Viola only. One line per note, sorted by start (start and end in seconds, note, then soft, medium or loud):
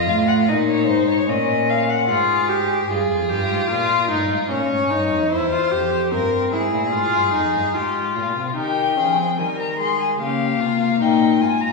2.09 2.51 F4 medium
2.49 2.88 G4 medium
2.89 3.31 G#4 medium
3.29 3.69 G4 medium
3.70 4.10 F4 loud
4.10 4.50 D#4 medium
4.50 4.92 C#4 medium
4.90 5.32 D#4 medium
5.30 5.50 E4 medium
5.51 5.72 F4 medium
5.71 6.13 G4 medium
6.11 6.54 C4 medium
6.52 6.92 E4 medium
6.93 7.33 F4 medium
7.34 7.76 D#4 medium
7.74 8.55 F4 medium
8.56 8.98 D#4 medium
8.97 9.19 C#4 medium
9.17 9.39 C4 medium
9.37 9.77 G3 medium
9.78 10.20 G#3 soft
10.19 11.72 A#3 medium